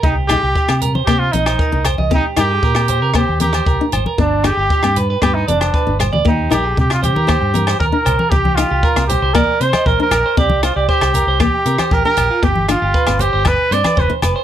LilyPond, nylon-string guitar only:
\new Staff \with { instrumentName = "Nylon-string guitar" } { \time 4/4 \key c \minor \tempo 4 = 116 r8 ees'8 r16 c'8 r16 bes8 c'8 r4 | c'8 ees'8 r16 c'8 r16 bes8 c'8 r16 d'8 r16 | b8 d'8 r16 c'8 r16 b8 c'8 r16 d'8 r16 | bes8 ees'8 r4 bes8 c'8 r16 d'8 r16 |
r8 ees'8 r16 c'8 r16 bes8 c'8 r16 d'8 r16 | c'8 r4. bes8 c'8 r16 d'8 r16 | b8 d'8 r16 c'8 r8. c'8 r4 | }